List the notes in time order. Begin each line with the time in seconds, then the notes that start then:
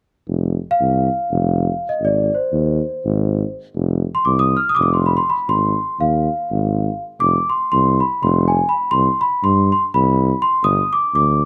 0.28 F1
0.71 F5
0.80 C2
1.31 F1
1.89 D#5
2.01 G#1 D5
2.34 C5
2.52 D#2
3.05 G#1
3.75 F1
4.15 C6
4.25 C2 D6
4.39 D#6
4.57 F6
4.69 D#6
4.75 D6 D#6
4.79 F1 D6
4.94 C6
5.06 B5
5.17 C6
5.30 B5
5.48 G#1 C6
6.00 D#2 F5
6.51 G#1
7.20 F1 D6
7.50 C6
7.72 C2 C6
8.00 B5
8.23 F1 C6
8.48 G#5
8.69 B5
8.91 C2 C6
9.21 B5
9.43 G2 C6
9.72 C6
9.94 C2 B5
10.42 C6
10.64 G1 D#6
10.93 D6
11.14 D2 D6